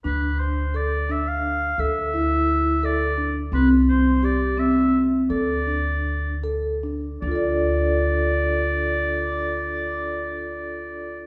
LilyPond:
<<
  \new Staff \with { instrumentName = "Oboe" } { \time 5/8 \key d \minor \tempo 4 = 82 b'8 c''8 d''8 e''16 f''8. | e''4. d''8. r16 | b'8 c''8 d''8 e''8 r8 | d''4. r4 |
d''2~ d''8~ | d''2~ d''8 | }
  \new Staff \with { instrumentName = "Vibraphone" } { \time 5/8 \key d \minor d'4 a'8 d'4 | a'8 e'4 a'8 d'8 | c'4 g'8 c'4 | a'8 d'4 a'8 d'8 |
<d' f' a' d''>2~ <d' f' a' d''>8~ | <d' f' a' d''>2~ <d' f' a' d''>8 | }
  \new Staff \with { instrumentName = "Upright bass" } { \clef bass \time 5/8 \key d \minor d,2~ d,8 | d,2~ d,8 | c,2~ c,8 | d,2~ d,8 |
d,2~ d,8~ | d,2~ d,8 | }
>>